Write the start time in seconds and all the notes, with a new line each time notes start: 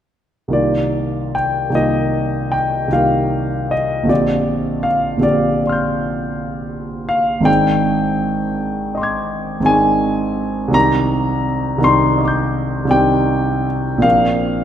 0.48 C2 D#3 A#3 F4
0.53 G4 D5
1.35 G5
1.70 C2 D#3 A#3
1.74 F4 G4 D#5
2.52 G5
2.88 C2 D#3 A#3 F4
2.93 G4 F5
3.71 D#5
4.04 A#1 D3 C4
4.08 F4 G4 D5
4.83 F5
5.17 A#1 D3 C4
5.21 F4 G4 D5
5.64 D5 C6
5.69 F6 G6
7.09 F5
7.40 G#1 D#3 C4 D4
7.45 G#4 G5
8.95 D#5 C6
9.01 D6 G#6
9.60 G#1 D#3 C4 D4
9.65 G#4 G#5
10.68 C2 D#3 C4
10.72 D4 G4 A#5
11.78 C2 D#3 C4
11.82 D4 G4 C6
12.18 D#5 C6
12.25 D6 G6
12.85 C2 D#3 C4
12.89 D4 G4 G5
13.98 A#1 F3 C4 D4
14.02 A#4 F5